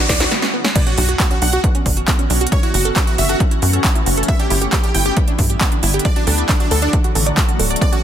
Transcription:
Already playing: D3 F#3 A3 F#4, riser
0.09 D2 B3 D5, kick, snare, open hi-hat
0.20 C#4 F#4, snare, closed hi-hat
0.31 B3, snare
0.42 C#4, snare
0.54 B3
0.65 C#4, snare
0.75 D3 B3 C#4 F#4 D5, kick, closed hi-hat, crash, sub drop
0.87 C#4 F#4, closed hi-hat
0.98 B1 D4 F#4, open hi-hat
1.09 F#4, closed hi-hat
1.20 B3 F#4, kick, clap, closed hi-hat
1.31 C#4 F#4, closed hi-hat
1.42 B1 D4 F#5, open hi-hat
1.53 F#4, closed hi-hat
1.64 B3, kick, closed hi-hat
1.75 C#4, closed hi-hat
1.86 F#1 D4, kick, open hi-hat
1.97 F#4, closed hi-hat
2.08 B3, kick, clap, closed hi-hat
2.19 C#4, closed hi-hat
2.30 B1 D4, open hi-hat
2.41 F#4, closed hi-hat
2.47 closed hi-hat
2.52 E3 A3 C#4 C#5, kick, closed hi-hat
2.63 E4 F#4, closed hi-hat
2.74 F#1 F#4, open hi-hat
2.85 A4, closed hi-hat
2.96 C#4 F#4, kick, clap, closed hi-hat
3.07 E4 F#4, closed hi-hat
3.18 F#1 F#4 E5, open hi-hat
3.29 F#4 A4, closed hi-hat
3.40 C#4, kick, closed hi-hat
3.51 E4, closed hi-hat
3.62 F#2 F#4, open hi-hat
3.73 A4, closed hi-hat
3.84 C#4, kick, clap, closed hi-hat
3.95 E4, closed hi-hat
4.06 F#1 F#4, open hi-hat
4.17 A4, closed hi-hat
4.23 closed hi-hat
4.28 D3 G3 B3 E4 E5, kick, closed hi-hat
4.39 D4 G4, closed hi-hat
4.50 G1 E4 G4, open hi-hat
4.62 G4, closed hi-hat
4.73 B3 G4, kick, clap, closed hi-hat
4.83 D4 G4, closed hi-hat
4.95 G1 E4 G5, open hi-hat
5.06 G4, closed hi-hat
5.17 B3, kick, closed hi-hat
5.28 D4, closed hi-hat
5.39 G2 E4, kick, open hi-hat
5.50 G4, closed hi-hat
5.61 B3, kick, clap, closed hi-hat
5.72 D4, closed hi-hat
5.83 G1 E4, open hi-hat
5.94 G4, closed hi-hat
5.99 closed hi-hat
6.05 F#3 A3 D4 F#4 D5, kick, closed hi-hat
6.16 D4 F#4, closed hi-hat
6.27 D2 D4 A4, open hi-hat
6.38 D5, closed hi-hat
6.49 D4, kick, clap, closed hi-hat
6.60 D4 F#4, closed hi-hat
6.71 D2 A4, open hi-hat
6.82 D4 D5, closed hi-hat
6.93 D4, kick, closed hi-hat
7.04 F#4, closed hi-hat
7.15 A1 A4, open hi-hat
7.26 D5, closed hi-hat
7.37 D4, kick, clap, closed hi-hat
7.48 F#4, closed hi-hat
7.59 D1 A4, open hi-hat
7.70 D5, closed hi-hat
7.76 closed hi-hat
7.81 B3 C#4 D5, kick, closed hi-hat
7.93 C#4 F#4, closed hi-hat

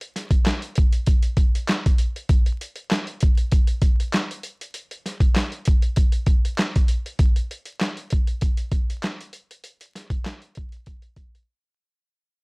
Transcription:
0.01 closed hi-hat
0.16 snare, closed hi-hat
0.31 kick, closed hi-hat
0.46 snare, clap, closed hi-hat
0.62 closed hi-hat
0.75 kick, closed hi-hat
0.92 closed hi-hat
1.06 kick, closed hi-hat
1.22 closed hi-hat
1.37 kick, closed hi-hat
1.55 closed hi-hat
1.68 snare, clap, closed hi-hat
1.86 kick, closed hi-hat
1.98 closed hi-hat
2.16 closed hi-hat
2.29 kick, closed hi-hat
2.46 closed hi-hat
2.61 closed hi-hat
2.76 closed hi-hat
2.91 snare, clap, closed hi-hat
3.07 closed hi-hat
3.20 kick, closed hi-hat
3.38 closed hi-hat
3.52 kick, closed hi-hat
3.67 closed hi-hat
3.82 kick, closed hi-hat
4.00 closed hi-hat
4.13 snare, clap, closed hi-hat
4.31 closed hi-hat
4.43 closed hi-hat
4.61 closed hi-hat
4.74 closed hi-hat
4.91 closed hi-hat
5.06 snare, closed hi-hat
5.20 kick, closed hi-hat
5.36 snare, clap, closed hi-hat
5.52 closed hi-hat
5.65 kick, closed hi-hat
5.82 closed hi-hat
5.96 kick, closed hi-hat
6.12 closed hi-hat
6.26 kick, closed hi-hat
6.45 closed hi-hat
6.58 snare, clap, closed hi-hat
6.76 kick, closed hi-hat
6.88 closed hi-hat
7.06 closed hi-hat
7.19 kick, closed hi-hat
7.36 closed hi-hat
7.51 closed hi-hat
7.65 closed hi-hat
7.80 snare, clap, closed hi-hat
7.97 closed hi-hat
8.10 kick, closed hi-hat
8.27 closed hi-hat
8.41 kick, closed hi-hat
8.57 closed hi-hat
8.72 kick, closed hi-hat
8.90 closed hi-hat
9.03 snare, clap, closed hi-hat
9.21 closed hi-hat
9.33 closed hi-hat
9.51 closed hi-hat
9.64 closed hi-hat
9.81 closed hi-hat
9.95 snare, closed hi-hat
10.10 kick, closed hi-hat
10.25 snare, clap, closed hi-hat
10.42 closed hi-hat
10.55 kick, closed hi-hat
10.72 closed hi-hat
10.86 kick, closed hi-hat
11.02 closed hi-hat
11.16 kick, closed hi-hat
11.35 closed hi-hat

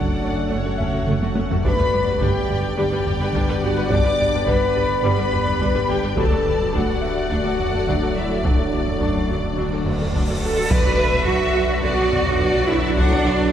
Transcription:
Already playing: F#1 F#3 A3 D4 F#4 A4 C#5 D5 F#5
0.22 F#1 F#2 A3 C#4 C#5
0.50 F#1 F#2 A3 C#4 C#5
0.65 F#2 A3 F#4
0.78 F#1 F#2 A3 C#4 E5, taiko low
0.93 F#2 A3 F#4, taiko low
1.07 F#1 F#2 A3, taiko mid
1.22 F#2 A3 F#4, taiko high
1.36 F#1 F#2 A3 C#4, taiko high
1.50 F#2 A3 F#4, taiko low
1.64 G1 G2 D3 G3 B3 D4 G4 B4 D5 B5, taiko
1.79 G2 G3 B4
1.92 G1 G2 G3 G4
2.07 G2 G3 B4, taiko low
2.20 G1 G2 G3 D4 G4 G5, taiko
2.48 G1 G2 G3 G4
2.76 G1 G2 G3 D4 G4 G5
2.91 G2 G3 B4
3.05 G1 G2 G3 G4, taiko low
3.20 G2 G3 B4, taiko low
3.33 G1 G2 G3 D4, taiko
3.48 G2 G3 B4
3.63 G1 G2 G3 F#4 G4 F#5
3.77 G2 G3 B4
3.90 G1 G2 G3 D4 D5 D6, taiko
4.04 G2 G3 B4
4.19 G1 G2 G3 D4 G4 D5
4.33 G2 G3 B4, taiko low
4.46 G1 G2 G3 D4 B4 B5, taiko
4.75 G1 G2 G3 G4
5.04 G1 G2 G3 D4 B4 B5
5.17 G2 G3 B4
5.32 G1 G2 G3 G4, taiko low
5.46 G2 G3 B4, taiko low
5.60 G1 G2 G3 D4, taiko
5.74 G2 G3 B4
5.88 G1 G2 G3 G4 G5
6.02 G2 G3 B4
6.16 D1 D2 D3 F#3 A3 D4 F#4 A4 D5 A5, taiko
6.31 D2 F#3 A4
6.44 D2 F#3 F#4
6.58 D2 F#3 A4, taiko low
6.72 D2 F#3 D4 F#4 F#5, taiko
7.01 D2 F#3 F#4 E5
7.30 D2 F#3 D4 F#4 F#5
7.44 D2 F#3 A4
7.57 D2 F#3 F#4, taiko low
7.73 D2 F#3 A4, taiko low
7.87 D2 F#3 D4, taiko
8.01 D2 F#3 A4
8.15 D2 F#3 E4 F#4 E5
8.28 D2 F#3 A4
8.43 D2 F#3 D4 D5, taiko, cymbal swell
8.57 D2 F#3 A4
8.72 D2 F#3 F#4
8.86 D2 F#3 A4, taiko low
9.00 D2 F#2 F#3 D4 C#6, taiko
9.29 D2 F#3 F#4
9.57 D2 F#3 D4
9.71 F#3 A4
9.85 D2 F#3 F#4 B4, taiko low
9.99 F#3 A4, taiko low
10.14 D2 F#3 D4, taiko
10.28 F#3 A4
10.42 D2 F#3 F#4 A4
10.56 F#3 A4
10.69 B1 D3 F#3 D4 F#4 B4 D5, taiko, impact
10.84 B1 F#3
10.98 B1 D3 A4 E5
11.12 B1 F#3, taiko low
11.26 B1 D3 F#4, taiko
11.54 B1 D3
11.82 B1 D3 B3 F#4 B4 D5
11.97 B1 F#3
12.11 B1 D3, taiko low
12.24 B1 F#3, taiko low
12.38 B1 D3 D5, taiko
12.52 B1 F#3
12.66 B1 D3 E4 E5
12.81 B1 F#3
12.96 B1 D3 D4 F#5, taiko
13.11 B1 F#3
13.25 B1 D3 D5
13.40 B1 F#3, taiko low

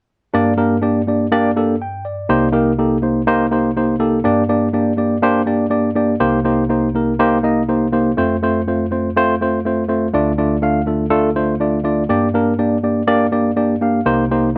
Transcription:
0.34 G2 A#3 D4 G4 D5
0.57 A#3 D4 G4 A#4
0.82 A#3 D4 G4 D5
1.07 A#3 D4 G4 D5
1.32 A#3 D4 G4 D5
1.56 A#3 D4 G4 A4
1.82 G5
2.05 D5
2.29 C2 C3 A#3 D#4 G4 C5
2.53 A#3 D#4 G4 A#4
2.79 A#3 D#4 G4 A4
3.02 A#3 D#4 G4 C5
3.27 A#3 D#4 G4 C5
3.51 A#3 D#4 G4 C5
3.77 A#3 D#4 G4 C5
4.00 A#3 D#4 G4 A4
4.24 G2 A#3 D4 G4 D5
4.49 A#3 D4 G4 D5
4.73 A#3 D4 G4 D5
4.97 A#3 D4 G4 D5
5.23 A#3 D4 G4 C5
5.46 A#3 D4 G4 D5
5.70 A#3 D4 G4 D5
5.95 A#3 D4 G4 D5
6.20 C2 C3 A#3 D#4 G4 C5
6.44 A#3 D#4 G4 C5
6.69 A#3 D#4 G4 C5
6.95 A#3 D#4 G4 A#4
7.19 A#3 D#4 G4 C5
7.43 A#3 D#4 G4 D#5
7.68 A#3 D#4 G4 C5
7.92 A#3 D#4 G4 C5
8.17 F2 A3 C4 F4 C5
8.43 A3 C4 F4 C5
8.67 A3 C4 F4 C5
8.91 A3 C4 F4 C5
9.17 A3 C4 F4 C5
9.41 A3 C4 F4 C5
9.65 A3 C4 F4 C5
9.88 A3 C4 F4 C5
10.13 D2 D3 A3 D4 F4 D5
10.38 A3 D4 F4 D5
10.62 A3 D4 F4 F5
10.86 A3 D4 F4 A4
11.10 A3 D4 F4 A4
11.36 A3 D4 F4 C5
11.60 A3 D4 F4 D5
11.84 A3 D4 F4 D5
12.09 G2 A#3 D4 G4 D5
12.34 A#3 D4 G4 A#4
12.59 A#3 D4 G4 D5
12.83 A#3 D4 G4 D5
13.07 A#3 D4 G4 D5
13.32 A#3 D4 G4 D5
13.56 A#3 D4 G4 D5
13.81 A#3 D4 G4 F5
14.06 C2 C3 A#3 D#4 G4 C5
14.31 A#3 D#4 G4 C5

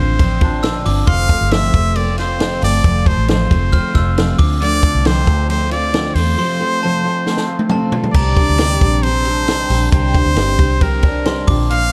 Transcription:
Already playing: A1 F3 C4 D4 F4 C5 F6
0.00 C4 D4
0.19 F3 C4 D4 F4, kick, ride
0.41 C4 D4 F4, kick, ride
0.62 A#2 F3 C4 D4 F4 E6, snare, ride
0.85 G1 F3 C4 D4 F4 D6, open hi-hat, ride
1.07 F1 F2 C3 F3 A3 C4 F4 F5 C6, kick, hi-hat pedal, ride
1.27 F3 A3 C4 F4, kick, ride
1.41 G1
1.50 F2 C3 F3 A3 C4 F4 E5, snare, ride
1.72 F1 A3 C4 F4, kick, ride
1.94 F3 A3 A#3 C4 F4 D5, ride
2.07 C4
2.16 F3 A3 C4 F4 C5, snare, ride
2.39 F2 C3 F3 A3 C4 F4, snare, ride
2.62 G1 F3 A3 C4 F4 D5, open hi-hat, ride
2.84 F1 F2 C3 F3 A3 C4 F4, kick, ride
3.06 F3 A3 C4 F4 C5, kick, ride
3.17 A1
3.28 F2 C3 F3 A3 C4 F4 C5, snare, ride
3.51 F1 F3 A3 C4 F4, kick, ride
3.72 F3 A3 C4 F4 F6, kick, ride
3.94 F1 F3 A3 C4 F4 E6, kick, snare, ride
4.17 F2 C3 F3 A3 C4 F4, snare, ride
4.39 D2 D3 A3 C4 F4 D6, kick, open hi-hat, ride
4.61 D3 F3 A3 C4 F4 D5, hi-hat pedal, ride
4.82 A3 C4 F4, kick, ride
4.95 C2
5.05 D3 F3 A3 C4 F4 C5, snare, ride
5.27 D2 A3 C4 F4, kick, ride
5.48 F3 A3 C4 F4 C5, ride
5.71 A3 C4 F4 D5, ride
5.93 D3 F3 A3 C4 F4, snare, ride
6.15 E2 A3 C4 F4 C5, open hi-hat, ride
6.39 F2 C3 F3 A3 C4 F4 C6
6.61 F3 A3 C4 F4
6.83 F2 C3 F3 A3 C4 F4 A5
7.05 F3 A3 C4 F4
7.26 F3 A3 C4 F4, snare
7.37 snare
7.48 F3 A3 C4 F4
7.59 high tom
7.69 F2 C3 F3 A3 C4 F4 A5, mid tom
7.92 F3 A3 C4 F4, floor tom
8.04 floor tom
8.13 C2 C3 G3 C4 G4 D5 A#5, kick, crash
8.17 D4
8.37 G3 C4 D4 G4, kick, ride
8.49 D2
8.58 C3 G3 A#3 C4 D4 G4, snare, ride
8.71 C4
8.81 A#1 G3 C4 D4 G4, kick, ride
9.03 G3 C4 D4 G4 C5, ride
9.25 C4 D4 G4, ride
9.48 C3 G3 C4 D4 G4, snare, ride
9.70 A#1 G3 C4 D4 G4, open hi-hat, ride
9.92 C2 C3 G3 C4 D4 G4 C5, kick, hi-hat pedal, ride
10.14 G3 C4 D4 G4, kick, ride
10.25 D2
10.36 G1 C3 G3 A#3 C4 D4 G4, snare, ride
10.48 C4
10.59 C2 G3 C4 D4 G4, kick, ride
10.81 G3 C4 D4 G4 A#4, kick, ride
11.03 D4 G4, kick, ride
11.07 C4
11.26 C3 G3 C4 D4 G4 C6, snare, ride
11.47 A#1 A#2 C4 D4 F4 D6, kick, open hi-hat, ride
11.69 A#2 F3 C4 D4 F4 F5, hi-hat pedal, ride

